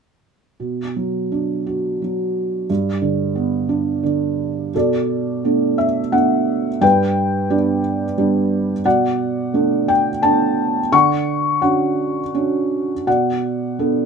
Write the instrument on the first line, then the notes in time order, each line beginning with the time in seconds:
felt piano
0.60 B2
0.96 F#3
1.32 D4
1.66 F#4
2.02 F#3
2.70 G2
3.02 D3
3.35 B3
3.69 D4
4.03 D3
4.74 B2 A4 D5
5.44 A3 B3 D4
5.78 E5
6.12 A3 B3 D4 F#5
6.81 G2 B4 G5
7.50 G3 B3 D4 D5
8.18 G3 B3 D4
8.85 B2 D5 F#5
9.54 A3 B3 D4
9.88 G5
10.23 A3 B3 D4 A5
10.92 D3 F#5 C#6
11.62 C#4 D4 F#4 F#5
12.34 C#4 D4 F#4
13.07 B2 D5 F#5
13.79 B3 D4 A4